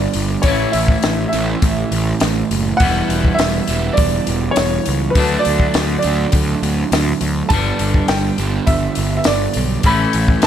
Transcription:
0.00 0.42 G2 medium
0.00 0.43 G2 medium
0.00 0.43 D3 medium
0.00 0.43 G3 medium
0.00 0.44 G3 medium
0.00 0.42 B3 medium
0.00 0.44 B3 medium
0.00 0.42 D4 medium
0.00 0.45 D4 medium
0.00 0.46 D5 medium
0.13 0.35 G1 medium
0.13 open hi-hat soft
0.42 0.65 A1 medium
0.42 1.31 A2 medium
0.42 1.35 E3 medium
0.42 1.32 A3 medium
0.42 1.32 C#4 medium
0.42 0.74 C#5 medium
0.42 kick medium
0.42 open hi-hat medium
0.46 1.32 E4 medium
0.72 0.95 A1 medium
0.72 1.27 E5 medium
0.72 open hi-hat medium
0.88 kick medium
1.03 1.25 A1 medium
1.03 snare loud
1.03 open hi-hat medium
1.29 2.45 E5 medium
1.33 1.54 A1 medium
1.33 2.80 A2 medium
1.33 2.79 E3 medium
1.33 2.80 A3 medium
1.33 2.79 C#4 medium
1.33 2.79 E4 medium
1.33 open hi-hat soft
1.62 1.83 A1 medium
1.62 kick loud
1.62 open hi-hat medium
1.92 2.12 A1 medium
1.92 open hi-hat soft
2.20 2.42 A1 medium
2.20 snare loud
2.20 open hi-hat medium
2.51 2.71 F#1 medium
2.51 open hi-hat soft
2.77 3.01 E1 medium
2.77 3.67 E3 medium
2.77 3.68 G3 medium
2.77 3.34 F#5 medium
2.77 kick medium
2.77 open hi-hat medium
2.82 3.68 B3 medium
2.82 3.68 E4 medium
3.09 3.30 E1 medium
3.09 open hi-hat soft
3.25 kick medium
3.34 3.92 E5 medium
3.39 3.60 E1 medium
3.39 snare loud
3.39 open hi-hat medium
3.68 3.89 E1 medium
3.68 5.16 G3 medium
3.68 5.15 B3 medium
3.68 5.15 E4 medium
3.68 open hi-hat soft
3.72 5.16 E3 medium
3.93 4.51 D5 medium
3.93 open hi-hat medium
3.98 4.19 E1 medium
3.98 kick loud
4.27 4.48 E1 medium
4.27 open hi-hat medium
4.51 5.15 C#5 medium
4.56 4.78 E1 medium
4.56 snare medium
4.56 open hi-hat medium
4.86 5.08 C#2 medium
4.86 open hi-hat medium
5.10 5.44 B4 medium
5.15 5.36 D2 medium
5.15 6.03 D3 medium
5.15 6.03 F#3 medium
5.15 6.03 A3 medium
5.15 6.03 D4 medium
5.15 kick loud
5.15 open hi-hat medium
5.39 5.97 D5 medium
5.45 5.66 D2 medium
5.45 open hi-hat medium
5.60 kick medium
5.74 5.95 D2 medium
5.74 snare loud
5.74 open hi-hat medium
5.98 7.15 D5 medium
6.03 6.25 D2 medium
6.03 7.50 D3 medium
6.03 7.50 F#3 medium
6.03 7.49 A3 medium
6.03 7.49 D4 medium
6.03 open hi-hat soft
6.32 6.54 D2 medium
6.32 kick loud
6.32 open hi-hat medium
6.63 6.83 D2 medium
6.63 open hi-hat soft
6.92 7.12 D2 medium
6.92 snare medium
6.92 open hi-hat medium
7.21 7.42 D2 medium
7.21 open hi-hat soft
7.49 7.71 G1 medium
7.49 8.37 G2 medium
7.49 8.37 D3 medium
7.49 8.37 G3 medium
7.49 8.38 B3 medium
7.49 8.37 D4 medium
7.49 8.05 A5 medium
7.49 kick loud
7.49 open hi-hat medium
7.79 8.00 G1 medium
7.79 open hi-hat soft
7.94 kick medium
8.08 8.30 G1 medium
8.08 8.64 G5 medium
8.08 snare loud
8.08 open hi-hat medium
8.38 8.59 G1 medium
8.38 9.84 G2 medium
8.38 9.84 D3 medium
8.38 9.84 G3 medium
8.38 9.84 B3 medium
8.38 9.83 D4 medium
8.38 open hi-hat soft
8.66 8.88 G1 medium
8.66 9.15 E5 medium
8.66 kick loud
8.66 open hi-hat medium
8.95 9.18 G1 medium
8.95 open hi-hat soft
9.17 9.25 E5 medium
9.24 9.47 G1 medium
9.24 9.87 D5 medium
9.24 snare loud
9.24 open hi-hat medium
9.54 9.76 B1 medium
9.54 open hi-hat soft
9.83 10.05 A1 medium
9.83 10.47 A2 medium
9.83 10.47 E3 medium
9.83 10.47 A3 medium
9.83 10.47 C#4 medium
9.83 10.47 E4 medium
9.83 10.46 B5 medium
9.83 kick loud
9.83 open hi-hat medium
10.13 10.35 A1 medium
10.13 open hi-hat soft
10.28 kick medium
10.42 snare loud
10.42 open hi-hat medium

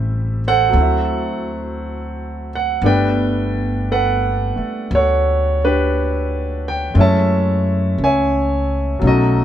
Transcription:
0.00 0.69 A1 medium
0.00 0.73 G3 soft
0.00 0.71 A3 soft
0.00 0.75 C4 soft
0.00 0.75 E4 medium
0.00 0.39 G4 medium
0.00 0.39 C5 medium
0.00 0.39 E5 medium
0.48 2.48 A4 medium
0.48 2.48 C5 medium
0.48 2.54 F#5 loud
0.69 2.79 F#3 medium
0.69 2.81 A3 soft
0.73 2.77 D2 medium
0.73 2.83 C4 soft
0.80 2.85 E4 medium
2.55 2.86 F#5 medium
2.82 4.52 G1 medium
2.82 6.96 G3 soft
2.82 4.54 A3 soft
2.82 6.96 B3 soft
2.82 5.63 D4 medium
2.82 4.87 D5 medium
2.86 3.90 B4 medium
2.86 3.91 G5 medium
3.92 4.93 A4 medium
3.92 5.63 B4 medium
3.92 4.88 F#5 medium
4.56 6.95 A3 soft
4.56 muted upright bass stroke soft
4.91 6.92 D2 medium
4.95 6.94 A4 medium
4.95 5.59 C#5 medium
4.95 6.94 F#5 medium
5.65 6.94 D4 medium
5.65 6.94 G4 medium
5.65 6.68 B4 medium
6.68 6.96 G5 medium
6.94 7.94 F#2 medium
6.94 9.01 G#3 medium
6.94 9.00 A3 medium
6.94 9.02 C#4 medium
6.99 9.03 E4 medium
6.99 8.02 C#5 medium
6.99 8.03 E5 medium
6.99 8.04 A5 medium
7.98 8.97 C#2 medium
8.04 9.00 C#5 medium
8.04 9.00 E5 medium
8.04 9.00 G#5 medium
8.99 9.45 B1 medium
8.99 9.45 F#3 medium
8.99 9.45 A3 soft
8.99 9.45 C#4 soft
9.05 9.45 D#4 medium
9.05 9.45 F#4 medium
9.05 9.45 A4 medium
9.05 9.45 D#5 medium

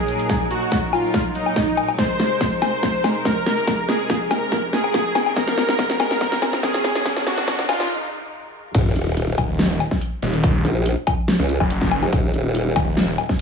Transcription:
0.00 1.94 A#2 medium
0.00 1.94 F#3 medium
0.00 8.71 D#4 medium
0.00 0.43 G#4 loud
0.00 1.94 A#4 medium
0.08 closed hi-hat medium
0.19 closed hi-hat soft
0.29 kick loud
0.29 snare medium
0.29 closed hi-hat medium
0.51 0.77 F#4 medium
0.51 closed hi-hat soft
0.72 kick medium
0.72 snare medium
0.72 closed hi-hat medium
0.93 1.20 F4 medium
0.93 low woodblock medium
1.14 kick loud
1.14 snare medium
1.14 closed hi-hat medium
1.35 1.90 D#4 loud
1.35 closed hi-hat medium
1.46 low woodblock medium
1.56 kick medium
1.56 snare medium
1.56 closed hi-hat medium
1.77 closed hi-hat medium
1.77 low woodblock medium
1.88 closed hi-hat soft
1.88 low woodblock medium
1.98 8.71 C3 medium
1.98 8.71 G#3 medium
1.98 8.71 A#4 medium
1.98 2.54 C5 loud
1.98 kick loud
1.98 snare medium
1.98 closed hi-hat medium
1.98 riser medium
2.20 snare medium
2.20 closed hi-hat medium
2.41 kick loud
2.41 snare medium
2.41 closed hi-hat medium
2.62 3.17 C5 loud
2.62 snare medium
2.62 open hi-hat medium
2.62 low woodblock medium
2.83 kick loud
2.83 snare medium
2.83 closed hi-hat medium
3.04 snare medium
3.04 closed hi-hat medium
3.04 low woodblock medium
3.25 3.81 A#4 loud
3.25 kick loud
3.25 snare medium
3.25 closed hi-hat medium
3.46 snare medium
3.46 closed hi-hat medium
3.57 closed hi-hat soft
3.67 kick loud
3.67 snare medium
3.67 closed hi-hat medium
3.89 4.15 G#4 medium
3.89 snare medium
3.89 closed hi-hat medium
4.10 kick medium
4.10 snare medium
4.10 closed hi-hat medium
4.31 4.58 A#4 medium
4.31 snare medium
4.31 open hi-hat loud
4.31 low woodblock medium
4.52 kick loud
4.52 snare medium
4.52 closed hi-hat medium
4.73 5.28 G#4 loud
4.73 snare medium
4.73 closed hi-hat medium
4.84 low woodblock medium
4.94 kick loud
4.94 snare medium
4.94 closed hi-hat medium
5.15 snare medium
5.15 closed hi-hat medium
5.15 low woodblock medium
5.26 closed hi-hat soft
5.26 low woodblock medium
5.36 5.92 A#4 loud
5.36 kick loud
5.36 snare medium
5.36 closed hi-hat medium
5.47 snare medium
5.58 snare loud
5.58 closed hi-hat medium
5.69 snare medium
5.79 kick loud
5.79 snare loud
5.79 closed hi-hat medium
5.90 snare medium
6.00 6.55 A#4 medium
6.00 snare loud
6.00 open hi-hat loud
6.00 low woodblock medium
6.11 snare medium
6.21 kick loud
6.21 snare loud
6.21 closed hi-hat medium
6.32 snare medium
6.42 snare loud
6.42 closed hi-hat medium
6.42 low woodblock medium
6.53 snare medium
6.63 7.19 G#4 loud
6.63 kick loud
6.63 snare loud
6.63 closed hi-hat medium
6.74 snare medium
6.84 snare loud
6.84 closed hi-hat medium
6.95 snare medium
6.95 closed hi-hat soft
7.06 kick loud
7.06 snare loud
7.06 closed hi-hat medium
7.17 snare medium
7.27 7.53 F#4 medium
7.27 snare loud
7.27 closed hi-hat medium
7.38 snare medium
7.48 kick loud
7.48 snare loud
7.48 closed hi-hat medium
7.59 snare medium
7.69 7.90 F4 medium
7.69 snare loud
7.69 open hi-hat loud
7.69 low woodblock medium
7.80 snare loud
8.75 8.94 D#1 medium
8.75 kick loud
8.75 closed hi-hat medium
8.75 crash loud
8.75 sub drop medium
8.96 9.36 D#1 loud
8.96 closed hi-hat medium
9.17 closed hi-hat medium
9.38 9.79 D#1 loud
9.38 kick loud
9.38 open hi-hat medium
9.38 low woodblock medium
9.59 snare loud
9.59 closed hi-hat medium
9.80 closed hi-hat medium
9.80 low woodblock medium
9.91 kick medium
9.91 snare soft
10.01 closed hi-hat medium
10.22 10.63 D#1 loud
10.22 closed hi-hat medium
10.34 closed hi-hat soft
10.44 kick loud
10.44 closed hi-hat medium
10.65 10.95 A#1 medium
10.65 closed hi-hat medium
10.86 closed hi-hat medium
11.07 kick loud
11.07 open hi-hat medium
11.07 low woodblock medium
11.28 snare loud
11.28 closed hi-hat medium
11.39 11.59 C#2 loud
11.49 closed hi-hat medium
11.60 12.01 F#1 loud
11.60 kick medium
11.60 low woodblock medium
11.70 closed hi-hat medium
11.81 kick medium
11.81 snare soft
11.91 closed hi-hat medium
11.91 low woodblock medium
12.02 12.11 F1 loud
12.02 closed hi-hat soft
12.02 low woodblock medium
12.13 12.32 D#1 medium
12.13 kick loud
12.13 closed hi-hat medium
12.34 12.74 D#1 loud
12.34 closed hi-hat medium
12.55 closed hi-hat medium
12.76 13.17 D#1 medium
12.76 kick loud
12.76 open hi-hat medium
12.76 low woodblock medium
12.97 snare loud
12.97 closed hi-hat medium
13.18 closed hi-hat medium
13.18 low woodblock medium
13.29 kick medium
13.29 snare soft

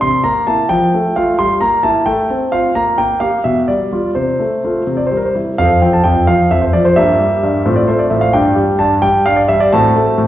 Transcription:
0.01 0.24 C3 medium
0.01 0.24 C6 medium
0.24 0.46 A#3 soft
0.24 0.44 A#5 medium
0.47 0.64 A#3 soft
0.47 0.64 E4 soft
0.47 0.68 A5 medium
0.69 0.92 F3 medium
0.69 1.15 G5 medium
0.94 1.15 A3 soft
1.16 1.33 A3 soft
1.16 1.33 F4 soft
1.16 1.36 F5 medium
1.39 1.61 G3 medium
1.39 1.52 C6 medium
1.61 1.82 A#3 soft
1.61 1.84 A#5 medium
1.83 2.00 A#3 soft
1.83 2.00 E4 soft
1.83 2.06 A5 medium
2.06 2.29 A3 medium
2.06 2.33 G5 medium
2.30 2.51 C4 soft
2.52 2.69 C4 soft
2.52 2.69 F4 soft
2.52 2.75 F5 medium
2.75 2.97 A#3 medium
2.75 2.98 A#5 medium
2.98 3.19 A#3 soft
2.98 3.19 G5 medium
3.20 3.38 A#3 soft
3.20 3.38 G4 soft
3.20 3.42 F5 medium
3.44 3.68 B2 medium
3.44 3.58 E5 medium
3.68 3.91 G3 soft
3.68 4.12 D5 medium
3.92 4.10 G3 soft
3.92 4.10 F4 soft
4.15 4.39 C3 soft
4.15 4.97 C5 medium
4.40 4.63 A3 soft
4.64 4.81 A3 soft
4.64 4.81 F4 soft
4.87 5.10 C3 soft
4.97 5.07 D5 soft
5.06 5.16 C5 medium
5.11 5.34 G3 soft
5.17 5.26 A#4 soft
5.25 5.35 C5 soft
5.35 5.52 G3 soft
5.35 5.52 E4 soft
5.58 5.81 F2 medium
5.58 6.93 C4 soft
5.58 6.93 A4 soft
5.58 5.79 F5 medium
5.82 6.04 F3 medium
5.82 5.93 G5 medium
5.93 6.05 A5 medium
6.04 6.27 F2 soft
6.04 6.25 G5 medium
6.27 6.50 F3 medium
6.27 6.51 F5 medium
6.51 6.73 F2 medium
6.51 6.62 E5 medium
6.61 6.73 C5 medium
6.73 6.96 F3 soft
6.73 6.85 D5 medium
6.85 6.97 C5 medium
6.96 7.19 G2 medium
6.96 7.62 A#3 soft
6.96 7.62 G4 soft
6.96 7.73 E5 medium
7.20 7.42 G3 medium
7.43 7.65 G2 medium
7.66 7.88 A2 medium
7.66 8.30 C4 soft
7.66 8.30 F4 soft
7.76 7.88 D5 medium
7.87 8.11 A3 medium
7.87 7.99 C5 medium
7.99 8.11 D5 medium
8.10 8.33 A2 medium
8.10 8.22 E5 medium
8.21 8.33 F5 medium
8.33 8.56 G2 medium
8.33 9.68 D4 soft
8.33 9.69 G4 soft
8.33 8.79 G5 medium
8.56 8.79 G3 medium
8.79 9.02 G2 medium
8.79 8.93 A5 medium
9.02 9.25 G3 medium
9.02 9.25 G5 medium
9.26 9.49 G2 medium
9.26 9.38 F5 medium
9.36 9.49 D5 medium
9.49 9.72 G3 medium
9.49 9.61 E5 medium
9.60 9.72 D5 medium
9.73 9.95 A2 medium
9.73 10.27 C4 soft
9.73 10.27 F#4 soft
9.73 10.27 A5 medium
9.96 10.18 A3 medium
10.18 10.27 A2 medium

